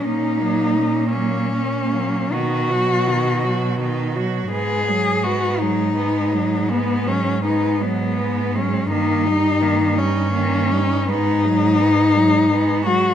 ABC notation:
X:1
M:12/8
L:1/8
Q:3/8=55
K:G#m
V:1 name="Cello"
D3 C3 F4- F z | G2 F D3 B, C D B,2 C | D3 C3 D4- D F |]
V:2 name="Cello"
C A, C A, C A, D F D F D F | B, G, B, G, B, G, B, G, B, G, B, G, | A, D A, D A, D B, G, B, G, B, G, |]
V:3 name="Cello" clef=bass
A, F, A, F, A, F, D, F, D, F, D, F, | G, F, G, F, G, F, G, F, G, F, G, F, | D, =G, D, G, D, G, ^G, F, G, F, G, F, |]
V:4 name="Cello" clef=bass
A,,6 B,,6 | G,,12 | =G,,6 ^G,,6 |]